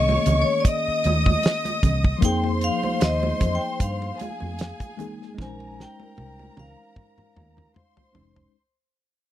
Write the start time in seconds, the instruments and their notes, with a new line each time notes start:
Already playing: fingered electric bass C2, tine electric piano D#3 A#3 C#4 G#4, violin section C#5 C#6, vibraphone D#5
0.09 muted conga, high conga
0.26 fingered electric bass C#2, closed hi-hat, high conga, low conga
0.42 vibraphone C#5
0.60 vibraphone D5
0.65 violin section D#5 D#6, vibraphone D#5, kick, closed hi-hat
0.88 muted fingered electric bass stroke
1.04 fingered electric bass D#2, closed hi-hat, high conga
1.26 kick, high conga
1.43 snare, closed hi-hat, muted conga
1.65 closed hi-hat, muted conga, high conga
1.83 fingered electric bass C2, kick, closed hi-hat, low conga
2.04 kick
2.19 tine electric piano F3 A#3, violin section C5 C6, kick, closed hi-hat
2.23 fingered electric bass F2, tine electric piano D#4 G#4, vibraphone G5, muted conga
2.44 muted conga
2.61 vibraphone F5, closed hi-hat
2.83 high conga
3.00 fingered electric bass D#2, vibraphone D#5, snare, closed hi-hat, muted conga
3.23 muted conga, high conga
3.41 fingered electric bass F2, kick, closed hi-hat, high conga, low conga
3.55 vibraphone G5
3.80 fingered electric bass G2, vibraphone F5, kick, closed hi-hat
4.02 muted conga
4.19 violin section G#4 G#5, closed hi-hat, high conga
4.40 fingered electric bass F2, high conga
4.59 snare, closed hi-hat
4.80 kick, closed hi-hat, muted conga, high conga
4.97 tine electric piano G#3 A#3 D#4 G#4, closed hi-hat, low conga
5.22 snare
5.34 tine electric piano G#3 C#4, violin section A#4 A#5, muted conga, low conga
5.38 fingered electric bass A#1, tine electric piano D#4 C5, vibraphone G#5, kick, snare
5.60 muted conga
5.80 vibraphone G5, snare
6.00 high conga
6.17 fingered electric bass C2, high tom, muted conga
6.39 muted conga, high conga
6.57 fingered electric bass C#2, vibraphone F5, high tom, high conga, low conga
6.96 kick, mid tom, muted conga
7.18 muted fingered electric bass stroke, mid tom, muted conga
7.36 fingered electric bass D#2, mid tom, high conga
7.57 mid tom, high conga
7.74 violin section C5 C6, mid tom, muted conga
7.97 floor tom, high conga
8.13 fingered electric bass F1, tine electric piano G#3 C#4 D#4 C5, floor tom, low conga
8.36 floor tom